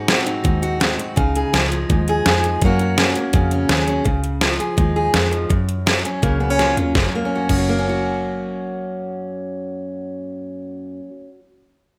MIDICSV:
0, 0, Header, 1, 4, 480
1, 0, Start_track
1, 0, Key_signature, 6, "major"
1, 0, Tempo, 361446
1, 1552, Time_signature, 4, 2, 24, 8
1, 15917, End_track
2, 0, Start_track
2, 0, Title_t, "Steel-string acoustic guitar"
2, 0, Program_c, 0, 25
2, 0, Note_on_c, 0, 44, 80
2, 0, Note_on_c, 0, 63, 62
2, 116, Note_on_c, 0, 60, 71
2, 124, Note_on_c, 0, 66, 61
2, 341, Note_off_c, 0, 63, 0
2, 346, Note_on_c, 0, 63, 65
2, 563, Note_off_c, 0, 44, 0
2, 579, Note_on_c, 0, 44, 70
2, 811, Note_off_c, 0, 66, 0
2, 827, Note_on_c, 0, 66, 71
2, 1046, Note_off_c, 0, 60, 0
2, 1058, Note_off_c, 0, 66, 0
2, 1061, Note_on_c, 0, 60, 62
2, 1074, Note_on_c, 0, 66, 63
2, 1297, Note_off_c, 0, 66, 0
2, 1313, Note_on_c, 0, 66, 65
2, 1516, Note_off_c, 0, 44, 0
2, 1518, Note_off_c, 0, 60, 0
2, 1520, Note_off_c, 0, 63, 0
2, 1524, Note_off_c, 0, 66, 0
2, 1541, Note_on_c, 0, 49, 76
2, 1549, Note_on_c, 0, 63, 55
2, 1810, Note_on_c, 0, 68, 58
2, 2026, Note_off_c, 0, 49, 0
2, 2030, Note_off_c, 0, 68, 0
2, 2036, Note_on_c, 0, 53, 70
2, 2046, Note_on_c, 0, 68, 73
2, 2267, Note_off_c, 0, 63, 0
2, 2297, Note_on_c, 0, 63, 68
2, 2533, Note_on_c, 0, 44, 72
2, 2758, Note_off_c, 0, 68, 0
2, 2778, Note_on_c, 0, 68, 75
2, 2993, Note_off_c, 0, 53, 0
2, 3004, Note_off_c, 0, 68, 0
2, 3019, Note_on_c, 0, 53, 65
2, 3032, Note_on_c, 0, 68, 62
2, 3239, Note_off_c, 0, 68, 0
2, 3255, Note_on_c, 0, 68, 67
2, 3452, Note_off_c, 0, 44, 0
2, 3453, Note_off_c, 0, 68, 0
2, 3454, Note_off_c, 0, 63, 0
2, 3455, Note_off_c, 0, 53, 0
2, 3502, Note_on_c, 0, 54, 62
2, 3515, Note_on_c, 0, 58, 66
2, 3525, Note_on_c, 0, 61, 62
2, 3532, Note_on_c, 0, 66, 72
2, 3716, Note_off_c, 0, 66, 0
2, 3732, Note_on_c, 0, 66, 63
2, 3953, Note_off_c, 0, 61, 0
2, 3965, Note_off_c, 0, 54, 0
2, 3969, Note_on_c, 0, 61, 61
2, 4197, Note_off_c, 0, 58, 0
2, 4213, Note_on_c, 0, 58, 60
2, 4445, Note_on_c, 0, 49, 68
2, 4668, Note_off_c, 0, 61, 0
2, 4684, Note_on_c, 0, 61, 63
2, 4899, Note_on_c, 0, 54, 64
2, 4906, Note_off_c, 0, 66, 0
2, 4911, Note_on_c, 0, 68, 58
2, 4916, Note_off_c, 0, 49, 0
2, 5135, Note_off_c, 0, 61, 0
2, 5151, Note_on_c, 0, 61, 58
2, 5354, Note_off_c, 0, 54, 0
2, 5360, Note_off_c, 0, 61, 0
2, 5360, Note_off_c, 0, 68, 0
2, 5370, Note_off_c, 0, 58, 0
2, 5371, Note_on_c, 0, 49, 70
2, 5858, Note_off_c, 0, 49, 0
2, 5859, Note_on_c, 0, 53, 66
2, 6103, Note_on_c, 0, 68, 64
2, 6330, Note_on_c, 0, 44, 59
2, 6341, Note_on_c, 0, 63, 65
2, 6572, Note_off_c, 0, 68, 0
2, 6588, Note_on_c, 0, 68, 67
2, 6822, Note_off_c, 0, 53, 0
2, 6831, Note_on_c, 0, 51, 56
2, 7052, Note_off_c, 0, 51, 0
2, 7057, Note_on_c, 0, 53, 58
2, 7269, Note_off_c, 0, 44, 0
2, 7274, Note_off_c, 0, 63, 0
2, 7278, Note_off_c, 0, 68, 0
2, 7296, Note_on_c, 0, 42, 72
2, 7301, Note_off_c, 0, 53, 0
2, 7786, Note_on_c, 0, 54, 61
2, 8032, Note_on_c, 0, 61, 57
2, 8263, Note_on_c, 0, 49, 69
2, 8272, Note_on_c, 0, 58, 62
2, 8497, Note_off_c, 0, 61, 0
2, 8502, Note_on_c, 0, 59, 63
2, 8633, Note_off_c, 0, 59, 0
2, 8633, Note_on_c, 0, 61, 44
2, 8737, Note_off_c, 0, 54, 0
2, 8744, Note_off_c, 0, 49, 0
2, 8752, Note_on_c, 0, 54, 53
2, 8762, Note_on_c, 0, 65, 53
2, 8977, Note_off_c, 0, 61, 0
2, 8993, Note_on_c, 0, 61, 54
2, 9192, Note_off_c, 0, 42, 0
2, 9200, Note_off_c, 0, 54, 0
2, 9200, Note_off_c, 0, 58, 0
2, 9200, Note_off_c, 0, 61, 0
2, 9205, Note_off_c, 0, 65, 0
2, 9225, Note_on_c, 0, 42, 58
2, 9363, Note_on_c, 0, 54, 54
2, 9499, Note_on_c, 0, 58, 59
2, 9630, Note_on_c, 0, 61, 53
2, 9766, Note_on_c, 0, 66, 51
2, 9946, Note_off_c, 0, 42, 0
2, 9951, Note_on_c, 0, 42, 66
2, 10067, Note_off_c, 0, 54, 0
2, 10073, Note_on_c, 0, 54, 65
2, 10207, Note_off_c, 0, 58, 0
2, 10212, Note_on_c, 0, 58, 62
2, 10334, Note_off_c, 0, 61, 0
2, 10339, Note_on_c, 0, 61, 59
2, 10475, Note_off_c, 0, 66, 0
2, 10481, Note_on_c, 0, 66, 56
2, 14599, Note_off_c, 0, 42, 0
2, 14721, Note_off_c, 0, 54, 0
2, 14860, Note_off_c, 0, 58, 0
2, 14987, Note_off_c, 0, 61, 0
2, 15129, Note_off_c, 0, 66, 0
2, 15917, End_track
3, 0, Start_track
3, 0, Title_t, "Fingered electric bass"
3, 0, Program_c, 1, 33
3, 0, Note_on_c, 1, 44, 102
3, 325, Note_off_c, 1, 44, 0
3, 594, Note_on_c, 1, 39, 81
3, 1289, Note_off_c, 1, 39, 0
3, 1557, Note_on_c, 1, 37, 91
3, 1902, Note_off_c, 1, 37, 0
3, 2038, Note_on_c, 1, 37, 84
3, 2443, Note_off_c, 1, 37, 0
3, 2520, Note_on_c, 1, 39, 86
3, 2924, Note_off_c, 1, 39, 0
3, 3000, Note_on_c, 1, 41, 88
3, 3403, Note_off_c, 1, 41, 0
3, 3481, Note_on_c, 1, 42, 93
3, 4172, Note_off_c, 1, 42, 0
3, 4424, Note_on_c, 1, 41, 85
3, 4834, Note_off_c, 1, 41, 0
3, 4900, Note_on_c, 1, 39, 79
3, 5311, Note_off_c, 1, 39, 0
3, 5388, Note_on_c, 1, 37, 93
3, 6082, Note_off_c, 1, 37, 0
3, 6343, Note_on_c, 1, 39, 80
3, 6752, Note_off_c, 1, 39, 0
3, 6828, Note_on_c, 1, 41, 80
3, 7235, Note_off_c, 1, 41, 0
3, 7309, Note_on_c, 1, 42, 91
3, 8003, Note_off_c, 1, 42, 0
3, 8273, Note_on_c, 1, 37, 79
3, 8966, Note_off_c, 1, 37, 0
3, 9232, Note_on_c, 1, 30, 88
3, 9363, Note_off_c, 1, 30, 0
3, 9945, Note_on_c, 1, 30, 84
3, 14018, Note_off_c, 1, 30, 0
3, 15917, End_track
4, 0, Start_track
4, 0, Title_t, "Drums"
4, 110, Note_on_c, 9, 38, 116
4, 110, Note_on_c, 9, 42, 79
4, 243, Note_off_c, 9, 38, 0
4, 243, Note_off_c, 9, 42, 0
4, 354, Note_on_c, 9, 42, 65
4, 487, Note_off_c, 9, 42, 0
4, 594, Note_on_c, 9, 42, 77
4, 596, Note_on_c, 9, 36, 103
4, 727, Note_off_c, 9, 42, 0
4, 729, Note_off_c, 9, 36, 0
4, 835, Note_on_c, 9, 42, 65
4, 968, Note_off_c, 9, 42, 0
4, 1077, Note_on_c, 9, 38, 95
4, 1077, Note_on_c, 9, 42, 76
4, 1210, Note_off_c, 9, 38, 0
4, 1210, Note_off_c, 9, 42, 0
4, 1321, Note_on_c, 9, 42, 64
4, 1454, Note_off_c, 9, 42, 0
4, 1557, Note_on_c, 9, 42, 84
4, 1559, Note_on_c, 9, 36, 116
4, 1690, Note_off_c, 9, 42, 0
4, 1691, Note_off_c, 9, 36, 0
4, 1799, Note_on_c, 9, 42, 60
4, 1932, Note_off_c, 9, 42, 0
4, 2043, Note_on_c, 9, 38, 110
4, 2043, Note_on_c, 9, 42, 76
4, 2176, Note_off_c, 9, 38, 0
4, 2176, Note_off_c, 9, 42, 0
4, 2282, Note_on_c, 9, 42, 62
4, 2415, Note_off_c, 9, 42, 0
4, 2519, Note_on_c, 9, 42, 76
4, 2522, Note_on_c, 9, 36, 109
4, 2652, Note_off_c, 9, 42, 0
4, 2655, Note_off_c, 9, 36, 0
4, 2759, Note_on_c, 9, 42, 63
4, 2892, Note_off_c, 9, 42, 0
4, 2998, Note_on_c, 9, 38, 104
4, 2998, Note_on_c, 9, 42, 78
4, 3131, Note_off_c, 9, 38, 0
4, 3131, Note_off_c, 9, 42, 0
4, 3239, Note_on_c, 9, 42, 67
4, 3371, Note_off_c, 9, 42, 0
4, 3473, Note_on_c, 9, 42, 81
4, 3479, Note_on_c, 9, 36, 115
4, 3606, Note_off_c, 9, 42, 0
4, 3612, Note_off_c, 9, 36, 0
4, 3710, Note_on_c, 9, 42, 65
4, 3843, Note_off_c, 9, 42, 0
4, 3954, Note_on_c, 9, 38, 99
4, 3954, Note_on_c, 9, 42, 82
4, 4087, Note_off_c, 9, 38, 0
4, 4087, Note_off_c, 9, 42, 0
4, 4190, Note_on_c, 9, 42, 66
4, 4323, Note_off_c, 9, 42, 0
4, 4423, Note_on_c, 9, 42, 90
4, 4430, Note_on_c, 9, 36, 110
4, 4556, Note_off_c, 9, 42, 0
4, 4563, Note_off_c, 9, 36, 0
4, 4665, Note_on_c, 9, 42, 67
4, 4798, Note_off_c, 9, 42, 0
4, 4904, Note_on_c, 9, 38, 104
4, 4904, Note_on_c, 9, 42, 85
4, 5037, Note_off_c, 9, 38, 0
4, 5037, Note_off_c, 9, 42, 0
4, 5148, Note_on_c, 9, 42, 65
4, 5280, Note_off_c, 9, 42, 0
4, 5384, Note_on_c, 9, 42, 61
4, 5387, Note_on_c, 9, 36, 114
4, 5517, Note_off_c, 9, 42, 0
4, 5520, Note_off_c, 9, 36, 0
4, 5625, Note_on_c, 9, 42, 52
4, 5758, Note_off_c, 9, 42, 0
4, 5861, Note_on_c, 9, 38, 95
4, 5861, Note_on_c, 9, 42, 56
4, 5993, Note_off_c, 9, 38, 0
4, 5993, Note_off_c, 9, 42, 0
4, 6110, Note_on_c, 9, 42, 55
4, 6243, Note_off_c, 9, 42, 0
4, 6345, Note_on_c, 9, 36, 106
4, 6347, Note_on_c, 9, 42, 55
4, 6478, Note_off_c, 9, 36, 0
4, 6479, Note_off_c, 9, 42, 0
4, 6824, Note_on_c, 9, 38, 98
4, 6824, Note_on_c, 9, 42, 55
4, 6956, Note_off_c, 9, 38, 0
4, 6956, Note_off_c, 9, 42, 0
4, 7073, Note_on_c, 9, 42, 64
4, 7206, Note_off_c, 9, 42, 0
4, 7309, Note_on_c, 9, 36, 103
4, 7309, Note_on_c, 9, 42, 65
4, 7441, Note_off_c, 9, 36, 0
4, 7442, Note_off_c, 9, 42, 0
4, 7552, Note_on_c, 9, 42, 61
4, 7684, Note_off_c, 9, 42, 0
4, 7795, Note_on_c, 9, 38, 104
4, 7795, Note_on_c, 9, 42, 66
4, 7928, Note_off_c, 9, 38, 0
4, 7928, Note_off_c, 9, 42, 0
4, 8038, Note_on_c, 9, 42, 63
4, 8171, Note_off_c, 9, 42, 0
4, 8273, Note_on_c, 9, 36, 103
4, 8276, Note_on_c, 9, 42, 59
4, 8406, Note_off_c, 9, 36, 0
4, 8409, Note_off_c, 9, 42, 0
4, 8755, Note_on_c, 9, 38, 53
4, 8755, Note_on_c, 9, 42, 57
4, 8888, Note_off_c, 9, 38, 0
4, 8888, Note_off_c, 9, 42, 0
4, 8995, Note_on_c, 9, 42, 58
4, 8995, Note_on_c, 9, 43, 81
4, 9128, Note_off_c, 9, 42, 0
4, 9128, Note_off_c, 9, 43, 0
4, 9232, Note_on_c, 9, 36, 102
4, 9233, Note_on_c, 9, 38, 77
4, 9365, Note_off_c, 9, 36, 0
4, 9365, Note_off_c, 9, 38, 0
4, 9951, Note_on_c, 9, 36, 91
4, 9953, Note_on_c, 9, 49, 83
4, 10084, Note_off_c, 9, 36, 0
4, 10086, Note_off_c, 9, 49, 0
4, 15917, End_track
0, 0, End_of_file